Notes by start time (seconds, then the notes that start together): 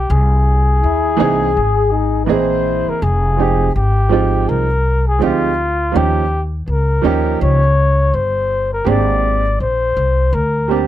Already playing: G4
0.10 C2 G#4
0.83 D#2 E4
1.17 C2 E3 A#3 C4 D#4 G#4
1.41 G#4
1.57 G#1
1.91 D#4
2.25 E3 A#3 C4 E4 B4
2.29 A#1 G#4 C5 D#5
2.88 A#4, muted upright bass stroke
3.02 F1 G#4
3.36 F3 G#3 C4 D#4 G4
3.76 G#1 G4
4.09 F3 G#3 C4 D#4 F4
4.49 C2 A#4
5.08 G#4
5.19 D2 F3 G#3 C4 D#4 F4 G4
5.92 D#2 F3 A#3 C#4 D#4 G4
5.96 G4
6.68 C#2 A#4
7.02 D#2 F3 A#3 C#4 D#4 G4
7.41 C#2 C#5
8.14 G1 C5
8.73 A#4
8.85 G#1 A#3 C4 D4 G4 G#4 D5
9.60 A#1 C5
9.97 C2
10.33 D2 A#4
10.68 G3 A#3 C4 D4 G4